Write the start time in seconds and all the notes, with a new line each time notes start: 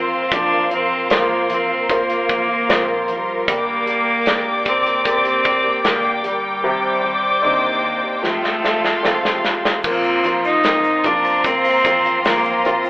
Already playing: F1 F3 A#3 C4 F4 A#4 C5 F5 C6
0.31 A#1 A#2 F3 A#3 C4 D4 F4, kick, closed hi-hat
0.70 F3 A#3 C4 F4, closed hi-hat
1.09 A#2 F3 A#3 C4 F4 A#4 C5, snare, closed hi-hat
1.49 A#1 F3 A#3 C4 F4, closed hi-hat
1.54 C4
1.69 A#3 C4 F4
1.90 A#3 F4 A#4 C5, kick, closed hi-hat
2.09 A#3 C4 F4, closed hi-hat
2.28 A1 F3 A#3 C4 F4, kick, closed hi-hat
2.48 A#3 C4 F4
2.68 G1 A#2 F3 A#3 C4 F4 A#4 C5, snare, closed hi-hat
3.08 D1 F3 A#3 C4 F4, closed hi-hat
3.12 G3
3.47 G1 G2 D3 G3 A#3 D4 G4 D5 G5 D6, kick, closed hi-hat
3.52 A#3
3.86 G3 A#3 D4 G4, closed hi-hat
4.26 G2 D3 G3 A#3 D4 G4 A#4 D5, snare, closed hi-hat
4.65 G1 G3 A#3 C4 D4 G4, kick, closed hi-hat
4.85 G3 A#3 D4 G4, closed hi-hat
5.05 C4 G4 A#4 D5, kick, closed hi-hat
5.25 G3 A#3 D4 G4, closed hi-hat
5.44 F1 G3 A#3 D4 G4, kick, closed hi-hat
5.64 G3 A#3 D4 G4
5.84 G2 D3 G3 A#3 D4 G4 A#4 D5, snare, closed hi-hat
6.23 G1 G3 A#3 D4 G4, closed hi-hat
6.62 C3 D#3 C4 D4 G4 C5 D5 D6
7.03 D#3 C4 D4 G4
7.42 C3 D#3 C4 D4 D#4 G4
7.46 A#3
7.82 D#3 C4 D4 G4
8.03 C4 D4 G4
8.22 F2 C3 F3 G3 A3 C4 F4 A4 F5 C6, snare
8.26 A3
8.43 G3 A3 C4 F4, snare
8.62 G3 A3 C4 F4, snare
8.83 G3 A3 C4 F4, snare
9.03 F2 C3 G3 A3 C4 F4 G4 A4, snare
9.25 snare
9.43 G3 A3 C4 F4, snare
9.65 snare
9.83 A#1 A#2 F3 A#3 C4 F4 C5 A#5 C6, kick, crash, shaker
10.03 shaker
10.23 F3 A#3 C4 F4, hi-hat pedal, open hi-hat
10.44 D#4, shaker
10.63 A#2 F3 A#3 C4 F4, snare, hi-hat pedal, open hi-hat, shaker
10.84 shaker
11.04 A#1 F3 A#3 C4 D4 F4, kick, hi-hat pedal, open hi-hat
11.25 open hi-hat, shaker
11.44 A#3 C4, kick, hi-hat pedal, open hi-hat, shaker
11.64 A#3 C4 F4, hi-hat pedal, open hi-hat, shaker
11.84 A1 F3 A#3 C4 F4, kick, hi-hat pedal, open hi-hat, shaker
12.04 hi-hat pedal, shaker
12.24 F3 A#3 C4 F4, snare, hi-hat pedal, open hi-hat, shaker
12.45 shaker
12.64 F1 F3 A#3 C4 F4, hi-hat pedal, open hi-hat
12.84 C4 F4, shaker